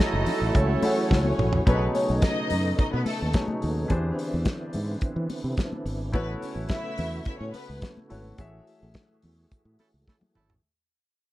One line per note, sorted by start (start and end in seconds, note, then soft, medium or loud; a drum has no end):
0.00 1.65 E3 medium
0.00 1.64 F#3 medium
0.00 0.79 A3 medium
0.00 1.35 A3 loud
0.00 1.63 A3 medium
0.00 1.35 C#4 medium
0.00 0.52 D#4 medium
0.00 0.79 E4 medium
0.00 1.35 E4 medium
0.00 1.64 F#4 medium
0.00 0.80 G#4 medium
0.00 1.35 A4 loud
0.00 0.80 C#5 medium
0.00 0.53 D#5 medium
0.00 0.81 F#5 medium
0.00 snare loud
0.13 0.23 F#1 medium
0.26 open hi-hat medium
0.26 low conga medium
0.42 0.51 A1 medium
0.55 0.75 C#2 loud
0.55 1.65 C#4 medium
0.55 1.64 C#5 loud
0.55 kick loud
0.55 closed hi-hat medium
0.83 1.65 A3 medium
0.83 1.67 E4 medium
0.83 1.67 G#4 medium
0.83 1.67 C#5 medium
0.83 1.67 F#5 medium
0.83 open hi-hat medium
0.83 muted conga medium
1.11 1.31 C#2 loud
1.11 kick loud
1.11 snare medium
1.11 high conga medium
1.25 high conga medium
1.39 1.59 A#1 loud
1.39 mid tom loud
1.53 floor tom medium
1.66 1.87 B1 loud
1.66 3.30 B2 medium
1.66 3.88 C#3 medium
1.66 3.31 F#3 medium
1.66 3.31 A3 medium
1.66 3.88 A3 medium
1.66 1.78 B3 loud
1.66 6.10 B3 medium
1.66 1.73 D4 medium
1.66 3.88 D#4 medium
1.66 3.31 G#4 medium
1.66 1.78 B4 loud
1.66 3.32 C#5 medium
1.66 kick loud
1.66 closed hi-hat medium
1.66 muted conga medium
1.74 3.33 D#4 medium
1.94 2.05 C#4 medium
1.94 2.05 C#5 medium
1.94 open hi-hat medium
1.94 muted conga soft
2.10 2.19 B1 medium
2.22 2.75 D#4 loud
2.22 2.75 D#5 loud
2.22 kick loud
2.22 snare loud
2.22 closed hi-hat medium
2.22 high conga medium
2.50 2.71 F#2 medium
2.50 open hi-hat medium
2.50 low conga medium
2.79 2.90 D#4 loud
2.79 2.90 D#5 medium
2.79 muted fingered electric bass stroke medium
2.79 kick loud
2.79 closed hi-hat medium
2.92 3.03 B2 loud
2.92 3.03 B3 loud
2.92 3.04 B4 loud
3.06 3.29 A3 loud
3.06 3.28 A4 loud
3.06 open hi-hat medium
3.06 muted conga medium
3.22 3.32 D#2 medium
3.33 3.90 B2 medium
3.33 3.90 F#3 medium
3.33 3.90 A3 medium
3.33 3.90 D#4 medium
3.33 3.89 G#4 medium
3.33 3.90 C#5 medium
3.33 kick loud
3.33 snare loud
3.33 closed hi-hat medium
3.33 high conga medium
3.48 high conga medium
3.62 3.83 D#2 loud
3.62 open hi-hat medium
3.88 4.11 E2 medium
3.88 6.12 D3 medium
3.88 6.09 E3 medium
3.88 6.12 C4 medium
3.88 6.09 D4 medium
3.88 6.12 E4 medium
3.88 6.10 G4 medium
3.88 6.10 G#4 medium
3.88 6.11 C5 medium
3.88 kick loud
3.88 closed hi-hat medium
3.88 muted conga medium
4.19 open hi-hat medium
4.34 4.43 E2 loud
4.45 kick loud
4.45 snare loud
4.45 closed hi-hat medium
4.45 high conga medium
4.73 4.95 G#2 medium
4.73 open hi-hat medium
4.73 low conga medium
5.01 muted fingered electric bass stroke medium
5.01 kick loud
5.01 closed hi-hat medium
5.16 5.26 E3 medium
5.30 open hi-hat medium
5.30 muted conga medium
5.44 5.54 C3 medium
5.57 kick loud
5.57 snare loud
5.57 closed hi-hat medium
5.57 high conga medium
5.73 high conga medium
5.86 6.14 G#1 loud
5.86 open hi-hat medium
6.12 6.34 A1 loud
6.12 8.36 C#3 medium
6.12 8.06 A3 medium
6.12 10.60 A3 medium
6.12 6.25 B3 medium
6.12 8.37 B3 medium
6.12 8.06 E4 medium
6.12 8.07 F#4 medium
6.12 10.60 F#4 medium
6.12 6.25 B4 loud
6.12 8.07 B4 medium
6.12 8.07 C#5 medium
6.12 kick loud
6.12 closed hi-hat medium
6.12 muted conga medium
6.41 6.53 C#4 medium
6.41 6.53 C#5 medium
6.41 open hi-hat medium
6.41 muted conga soft
6.56 6.66 A1 medium
6.69 7.22 E4 loud
6.69 7.23 E5 loud
6.69 kick loud
6.69 snare loud
6.69 closed hi-hat medium
6.69 high conga medium
6.98 7.19 E2 medium
6.98 open hi-hat medium
6.98 low conga medium
7.25 7.37 E4 medium
7.25 7.37 E5 loud
7.25 muted fingered electric bass stroke soft
7.25 kick loud
7.25 closed hi-hat medium
7.39 7.51 A2 loud
7.39 7.51 C#4 loud
7.39 7.51 C#5 loud
7.52 7.75 B3 medium
7.52 7.76 B4 loud
7.52 open hi-hat medium
7.52 muted conga medium
7.70 7.79 C#2 medium
7.82 kick loud
7.82 snare loud
7.82 closed hi-hat medium
7.82 high conga medium
7.97 high conga medium
8.10 8.31 G#1 medium
8.10 8.38 A3 medium
8.10 8.38 E4 soft
8.10 8.36 F#4 medium
8.10 8.39 B4 medium
8.10 8.38 C#5 medium
8.10 open hi-hat medium
8.37 8.59 A1 loud
8.37 10.62 E3 medium
8.37 8.44 G#3 medium
8.37 10.60 F#4 medium
8.37 10.60 G#4 medium
8.37 10.62 G#4 medium
8.37 10.60 C#5 medium
8.37 10.61 E5 medium
8.37 kick loud
8.37 closed hi-hat medium
8.37 muted conga medium
8.44 10.62 A3 medium
8.67 open hi-hat medium
8.83 8.92 A1 loud
8.94 kick loud
8.94 snare loud
8.94 closed hi-hat medium
8.94 high conga medium
9.22 9.44 E2 medium
9.22 open hi-hat medium
9.22 low conga medium
9.51 muted fingered electric bass stroke soft
9.51 kick loud
9.51 closed hi-hat medium
9.65 9.75 A2 loud
9.79 9.89 A3 medium
9.79 9.89 C#4 medium
9.79 9.89 E4 medium
9.79 9.89 A4 medium
9.79 open hi-hat medium
9.79 muted conga medium
9.94 10.04 C#2 medium
10.08 10.17 A3 medium
10.08 10.17 C#4 medium
10.08 10.17 E4 medium
10.08 10.17 A4 medium
10.08 kick loud
10.08 snare medium
10.08 high conga medium
10.21 high tom medium
10.21 high conga medium
10.35 10.57 G#1 medium
10.35 10.54 A3 medium
10.35 10.54 C#4 medium
10.35 10.54 E4 medium
10.35 10.54 A4 medium
10.35 mid tom medium
10.50 floor tom medium